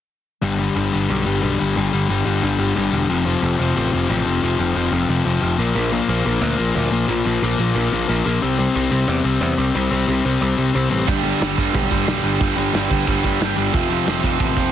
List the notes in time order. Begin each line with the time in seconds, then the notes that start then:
0.42 G1 G2 D3 G3
0.59 G2 D3 G3
0.76 G1 G2 D3 G3
0.93 G1 G2 D3 G3
1.09 B1 G2 D3 G3
1.25 G1 G2 D3 G3
1.42 B1 G2 D3 G3
1.59 G1 G2 D3 G3
1.76 G1 G2 D3 G3
1.93 G1 G2 D3 G3
2.09 G1 G2 D3 G3
2.25 G1 G2 D3 G3
2.42 G1 G2 D3 G3
2.58 G1 G2 D3 G3
2.75 G1 G2 D3 G3
2.91 E1 G2 D3 G3
3.09 F1 F2 C3 F3
3.25 F2 C3 F3
3.42 F1 F2 C3 F3
3.59 F1 F2 C3 F3
3.75 A1 F2 C3 F3
3.93 F1 F2 C3 F3
4.09 A1 F2 C3 F3
4.26 F1 F2 C3 F3
4.43 F1 F2 C3 F3
4.59 F1 F2 C3 F3
4.75 F1 F2 C3 F3
4.91 F1 F2 C3 F3
5.08 F1 F2 C3 F3
5.25 F1 F2 C3 F3
5.41 F1 F2 C3 F3
5.58 A#1 A#2 F3 A#3
5.75 A#1 A#2 F3 A#3
5.92 A#2 F3 A#3
6.08 A#1 A#2 F3 A#3
6.25 A#1 A#2 F3 A#3
6.41 D2 A#2 F3 A#3
6.58 A#1 A#2 F3 A#3
6.75 D2 A#2 F3 A#3
6.92 A#1 A#2 F3 A#3
7.08 A#1 A#2 F3 A#3
7.25 A#1 A#2 F3 A#3
7.42 A#1 A#2 F3 A#3
7.58 A#1 A#2 F3 A#3
7.75 A#1 A#2 F3 A#3
7.92 A#1 A#2 F3 A#3
8.08 A#1 A#2 F3 A#3
8.25 A#1 A#2 F3 A#3
8.41 C2 C3 G3 C4
8.59 C3 G3 C4
8.75 C2 C3 G3 C4
8.91 C2 C3 G3 C4
9.08 E2 C3 G3 C4
9.25 C2 C3 G3 C4
9.41 E2 C3 G3 C4
9.58 C2 C3 G3 C4
9.75 C2 C3 G3 C4
9.91 C2 C3 G3 C4
10.08 C2 C3 G3 C4
10.25 C2 C3 G3 C4
10.41 C2 C3 G3 C4
10.57 C2 C3 G3 C4
10.74 C2 C3 G3 C4
10.90 A1 C3 G3 C4
11.07 G1 G2 D3 G3, kick, open hi-hat
11.23 G2 D3 G3, open hi-hat
11.40 G1 G2 D3 G3, snare, open hi-hat
11.58 G1 G2 D3 G3, kick, open hi-hat
11.74 B1 G2 D3 G3, kick, open hi-hat
11.91 G1 G2 D3 G3, kick, open hi-hat
12.07 B1 G2 D3 G3, snare, open hi-hat
12.24 G1 G2 D3 G3, open hi-hat
12.40 G1 G2 D3 G3, kick, open hi-hat
12.57 G1 G2 D3 G3, open hi-hat
12.73 G1 G2 D3 G3, snare, open hi-hat
12.90 G1 G2 D3 G3, kick, open hi-hat
13.07 G1 G2 D3 G3, kick, open hi-hat
13.24 G1 G2 D3 G3, kick, open hi-hat
13.40 G1 G2 D3 G3, snare, open hi-hat
13.56 G1 G2 D3 G3, open hi-hat
13.73 F1 F2 C3 F3, kick, open hi-hat
13.89 F2 C3 F3, open hi-hat
14.05 F1 F2 C3 F3, snare, open hi-hat
14.22 F1 F2 C3 F3, kick, open hi-hat
14.39 A1 F2 C3 F3, kick, open hi-hat
14.56 F1 F2 C3 F3, kick, open hi-hat